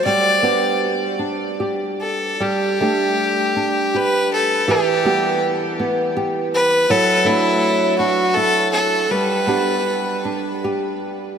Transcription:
X:1
M:3/4
L:1/8
Q:1/4=80
K:G
V:1 name="Fiddle"
d2 z3 A | G4 B A | G2 z3 B | A E2 F A A |
B4 z2 |]
V:2 name="Nylon-string guitar"
[G,G] [B,DG]2 D G2 | [G,G] [A,DG]2 D G2 | [E,G] [G,B,G]2 B, G2 | [F,E] [A,DE]2 D E2 |
[G,G] [B,DG]2 D G2 |]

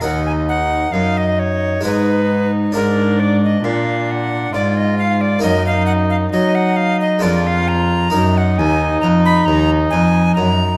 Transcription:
X:1
M:3/4
L:1/16
Q:1/4=67
K:Ebm
V:1 name="Recorder"
g a g2 f e d2 c3 z | B2 =d e f2 g2 d e f d | e f g f e g f e =d f b2- | b g a2 b c' b2 a2 b2 |]
V:2 name="Violin"
E4 E4 E4 | =D4 D4 F4 | E4 E4 F4 | E12 |]
V:3 name="Harpsichord"
[EB]8 [A,EA]4 | [=DB]12 | [B,EB]8 [A,=DB]4 | [EB]12 |]
V:4 name="Harpsichord" clef=bass
E,,4 G,,4 A,,4 | A,,4 B,,4 A,,4 | G,,4 G,4 F,,4 | G,,2 E,,2 F,,2 E,,2 F,,2 G,,2 |]
V:5 name="Cello" clef=bass
E,,4 G,,4 A,,4 | A,,4 B,,4 A,,4 | G,,4 G,4 F,,4 | G,,2 E,,2 F,,2 E,,2 F,,2 G,,2 |]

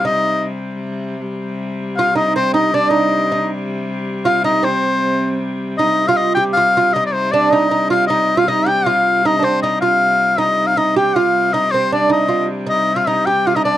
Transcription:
X:1
M:6/8
L:1/16
Q:3/8=104
K:Cm
V:1 name="Shawm"
e4- e/2 z6 z3/2 | z8 f2 e2 | c2 e2 d2 e6 | z8 f2 e2 |
c8 z4 | e3 f e2 g2 f4 | e3/2 d/2 c2 d2 e4 f2 | e3 f e2 g2 f4 |
e2 c2 e2 f6 | e3 f e2 g2 f4 | e2 c2 d2 e4 z2 | e3 f e2 g2 f e d2 |]
V:2 name="Lute"
E4- E/2 z6 z3/2 | z8 F2 E2 | C2 E2 D2 E4 E2 | z8 F2 E2 |
C8 z4 | E3 F3 G2 F2 F2 | E4 D2 E2 E2 F2 | E3 F E2 G2 F4 |
E3/2 D/2 C2 E2 F6 | E4 E2 G2 F4 | E2 C2 D2 E2 F2 z2 | E3 F E2 G2 F E D2 |]
V:3 name="Hurdy-gurdy" clef=bass
[C,G,]12 | [C,G,]12- | [C,G,]12- | [C,G,]12- |
[C,G,]12 | [C,G,]12- | [C,G,]12- | [C,G,]12- |
[C,G,]12 | [C,G,]12- | [C,G,]12- | [C,G,]12 |]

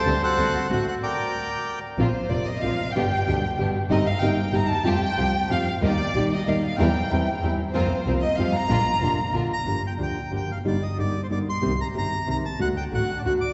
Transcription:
X:1
M:3/4
L:1/16
Q:1/4=187
K:Gm
V:1 name="Bandoneon"
[ca]2 [Ac^f]6 f2 f2 | [Bdg]8- [Bdg]2 z2 | [K:Bb] z12 | z12 |
z12 | z12 | z12 | z12 |
z12 | z8 z2 b2- | [K:Gm] b2 g2 g4 g2 f2 | d2 e2 d3 c d2 c'2- |
c'2 b2 b4 b2 a2 | ^f2 g2 f3 d f2 d'2 |]
V:2 name="Violin section"
A2 ^F6 F2 F2 | z12 | [K:Bb] c4 d2 e2 f4 | g8 z4 |
e2 f2 g4 b2 a2 | g8 f3 z | d6 e2 f2 f2 | g8 z4 |
c4 z2 e2 f2 b2- | b8 z4 | [K:Gm] z12 | z12 |
z12 | z4 ^F3 D F2 d2 |]
V:3 name="String section"
[CDG]2 z2 [CD^F]2 z2 [CDF]2 z2 | z12 | [K:Bb] [B,CF]2 z2 [B,CF]2 z2 [B,CF]2 z2 | [=B,DG]2 z2 [B,DG]2 z2 [B,DG]2 z2 |
[CEB]2 z2 [CEB]2 z2 [CEB]2 z2 | [A,FG]2 z2 [A,FG]2 z2 [A,FG]2 z2 | [B,EG]2 z2 [B,EG]2 z2 [B,EG]2 z2 | [C=EB]2 z2 [CEB]2 z2 [CEB]2 z2 |
[CFB]2 z2 [CFB]2 z2 [A,FG]2 z2 | [B,DF]2 z2 [B,DF]2 z2 [B,DF]2 z2 | [K:Gm] z12 | z12 |
z12 | z12 |]
V:4 name="Nylon-string guitar"
[D,G,C]2 z2 [D,A,C^F]2 z2 [D,A,CF]2 z2 | z12 | [K:Bb] [F,B,CF]2 z2 [F,B,CF]2 z2 [F,B,CF]2 z2 | [=B,,D,G,=B,G]2 z2 [B,,D,G,B,G]2 z2 [B,,D,G,B,G]2 z2 |
[C,G,B,EG]2 z2 [C,G,B,EG]2 z2 [C,G,B,EG]2 z2 | [F,G,CF]2 z2 [F,G,CF]2 z2 [F,G,CF]2 z2 | [E,G,B,EG]2 z2 [E,G,B,EG]2 z2 [E,G,B,EG]2 z2 | [=E,G,C=E]2 z2 [E,G,CE]2 z2 [E,G,CE]2 z2 |
[F,B,CF]2 z2 [F,B,CF]2 z2 [F,G,CF]2 z2 | [D,B,DF]2 z2 [D,B,DF]2 z2 [D,B,DF]2 z2 | [K:Gm] [D,F,B,DG]2 z2 [D,F,B,DG]2 z2 [D,F,B,DG]2 z2 | [D,G,B,EG]2 z2 [D,G,B,EG]2 z2 [D,G,B,EG]2 z2 |
[C,E,B,CG]2 z2 [C,E,B,CG]2 z2 [C,E,B,CG]2 z2 | [D,A,D^F]2 z2 [D,A,DF]2 z2 [D,A,DF]2 z2 |]
V:5 name="Double bass" clef=bass
D,,2 z2 D,,2 z2 A,,,2 z2 | z12 | [K:Bb] B,,,2 z2 F,,,2 z2 B,,,2 F,,,2 | G,,,2 z2 D,,2 z2 G,,,2 z2 |
G,,,2 z2 G,,,2 z2 G,,,2 E,,2 | F,,2 z2 C,,2 z2 F,,2 z2 | E,,2 z2 B,,,2 z2 E,,2 z2 | =E,,2 z2 E,,2 z2 E,,2 _E,,2 |
F,,2 z2 C,,2 z2 F,,2 z2 | B,,,2 z2 F,,,2 z2 B,,,2 z2 | [K:Gm] G,,,2 z2 D,,2 z2 G,,,2 F,,,2 | G,,,2 z2 G,,,2 z2 G,,,2 B,,,2 |
C,,2 z2 G,,,2 z2 C,,2 C,,2 | D,,2 z2 A,,,2 z2 D,,2 z2 |]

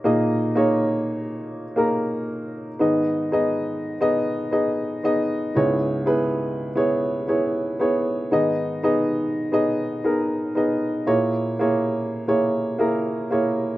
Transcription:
X:1
M:4/4
L:1/16
Q:1/4=87
K:G#m
V:1 name="Upright piano"
[A,DGd]3 [A,DGc]6 z [A,DGA]4- [A,DGA] z | [B,DGd]3 [B,DGd]4 [B,DGd]3 [B,DGd]3 [B,DGd]3 | [B,EGc]3 [B,EGB]4 [B,EGc]3 [B,EGc]3 [B,EGc]3 | [B,DGd]3 [B,DGd]4 [B,DGd]3 [B,DGA]3 [B,DGd]3 |
[A,EGc]3 [A,EGc]4 [A,EGc]3 [A,EGA]3 [A,EGc]3 |]
V:2 name="Upright piano" clef=bass
A,,16 | [G,,D,]16 | [C,,G,,]16 | [G,,D,]16 |
A,,16 |]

